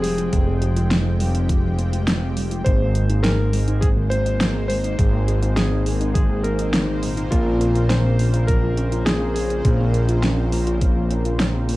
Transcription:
Already playing: F1 F3 G#3 C4 F4 G4 G5
0.02 G3 G#4, open hi-hat
0.18 F4, closed hi-hat
0.33 F1 F3 G#3 C4 F4 G5, kick, closed hi-hat
0.47 G#3
0.62 G4, closed hi-hat
0.76 F4, closed hi-hat
0.91 C4, snare, closed hi-hat
1.06 G#3
1.20 G3 G#3 C4 F4 G4, open hi-hat
1.35 F4, closed hi-hat
1.49 F3, kick, closed hi-hat
1.64 F3
1.79 C4, closed hi-hat
1.93 F4, closed hi-hat
2.07 C4, snare, closed hi-hat
2.22 G#3
2.37 G3, open hi-hat
2.51 F4, closed hi-hat
2.64 G#1 G#2 D#3 G#3 A#3 C4 D#4 G#4 C5, kick, closed hi-hat
2.80 A#3
2.95 G#4, closed hi-hat
3.10 D#4, closed hi-hat
3.23 C4 A#4, snare, closed hi-hat
3.39 A#3
3.53 G#2 G#3 A#3 C4 D#4 G#4, open hi-hat
3.68 D#4, closed hi-hat
3.81 D#3 G#4, kick, closed hi-hat
3.97 D#3
4.10 C4 C5, closed hi-hat
4.26 D#4, closed hi-hat
4.41 C4, snare, closed hi-hat
4.55 A#3
4.68 G#3 C5, open hi-hat
4.84 D#4, closed hi-hat
4.99 G#1 G#2 D#3 A#3 C4 D#4 G#4, kick, closed hi-hat
5.13 A#3
5.28 G#4, closed hi-hat
5.43 D#4, closed hi-hat
5.56 C4 G#4, snare, closed hi-hat
5.72 A#3
5.86 G#2 G#3 A#3 C4 D#4 G#4, open hi-hat
6.01 D#4, closed hi-hat
6.14 D#3 G#4, kick, closed hi-hat
6.30 D#3
6.44 C4 A#4, closed hi-hat
6.59 D#4, closed hi-hat
6.74 C4, snare, closed hi-hat
6.88 G#2 A#3 C4 D#4 C5
7.03 A#2 G#3 A#3 C4 D#4 A#4, open hi-hat
7.17 D#4, closed hi-hat
7.30 A#1 A#2 C#3 F3 C4 C#4 F4 A#4, kick, closed hi-hat
7.46 C4
7.61 A#4, closed hi-hat
7.75 F4, closed hi-hat
7.89 C#4 C5, snare, closed hi-hat
8.05 C4
8.19 A#2 A#3 C4 C#4 F4 A#4, open hi-hat
8.34 F4, closed hi-hat
8.47 F3 A#4, kick, closed hi-hat
8.63 F3
8.77 C#4, closed hi-hat
8.92 F4, closed hi-hat
9.05 C#4 G#4, snare, closed hi-hat
9.21 C4
9.34 A#3 G#4, open hi-hat
9.50 F4, closed hi-hat
9.65 A#1 A#2 F3 C4 C#4 F4 A#4, kick, closed hi-hat
9.80 C4
9.94 A#4, closed hi-hat
10.09 F4, closed hi-hat
10.23 C#4, snare, closed hi-hat
10.38 C4
10.52 A#2 A#3 C4 C#4 F4 A#4, open hi-hat
10.67 F4, closed hi-hat
10.81 F3, kick, closed hi-hat
10.96 F3
11.11 C#4, closed hi-hat
11.25 F4, closed hi-hat
11.40 C#4, snare, closed hi-hat
11.54 C4
11.69 A#3, open hi-hat

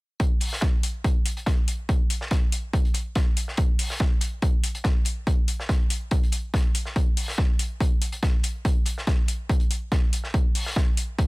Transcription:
0.20 kick, closed hi-hat
0.40 open hi-hat
0.53 snare
0.61 kick, snare, closed hi-hat
0.83 closed hi-hat, open hi-hat
1.04 kick, closed hi-hat
1.26 closed hi-hat, open hi-hat
1.37 closed hi-hat
1.46 kick, snare, closed hi-hat
1.68 closed hi-hat, open hi-hat
1.89 kick, closed hi-hat
2.10 closed hi-hat, open hi-hat
2.21 snare
2.31 kick, snare, closed hi-hat
2.52 closed hi-hat, open hi-hat
2.73 kick, closed hi-hat
2.85 closed hi-hat
2.94 closed hi-hat, open hi-hat
3.15 kick, snare, closed hi-hat
3.37 closed hi-hat, open hi-hat
3.48 snare
3.57 kick, closed hi-hat
3.79 open hi-hat
3.90 snare
4.00 kick, snare, closed hi-hat
4.21 closed hi-hat, open hi-hat
4.42 kick, closed hi-hat
4.64 closed hi-hat, open hi-hat
4.75 closed hi-hat
4.84 kick, snare, closed hi-hat
5.05 closed hi-hat, open hi-hat
5.27 kick, closed hi-hat
5.48 closed hi-hat, open hi-hat
5.60 snare
5.69 kick, snare, closed hi-hat
5.90 closed hi-hat, open hi-hat
6.11 kick, closed hi-hat
6.23 closed hi-hat
6.32 closed hi-hat, open hi-hat
6.54 kick, snare, closed hi-hat
6.75 closed hi-hat, open hi-hat
6.85 snare
6.96 kick, closed hi-hat
7.17 open hi-hat
7.28 snare
7.38 kick, snare
7.59 closed hi-hat, open hi-hat
7.80 kick, closed hi-hat
8.02 closed hi-hat, open hi-hat
8.12 closed hi-hat
8.23 kick, snare, closed hi-hat
8.43 closed hi-hat, open hi-hat
8.65 kick, closed hi-hat
8.86 closed hi-hat, open hi-hat
8.98 snare
9.07 kick, snare, closed hi-hat
9.28 closed hi-hat, open hi-hat
9.49 kick, closed hi-hat
9.60 closed hi-hat
9.71 closed hi-hat, open hi-hat
9.92 kick, snare, closed hi-hat
10.13 closed hi-hat, open hi-hat
10.24 snare
10.34 kick, closed hi-hat
10.55 open hi-hat
10.66 snare
10.76 kick, snare, closed hi-hat
10.97 closed hi-hat, open hi-hat
11.19 kick, closed hi-hat

